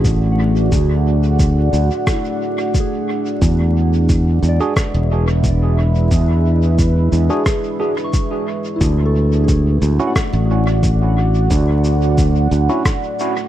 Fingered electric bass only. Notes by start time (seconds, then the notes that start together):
Already playing: A1
0.72 D2
1.73 D2
3.42 E2
4.43 E2
4.94 E1
6.11 E2
7.12 E2
8.81 D2
9.82 D2
10.33 A1
11.50 D2
12.51 D2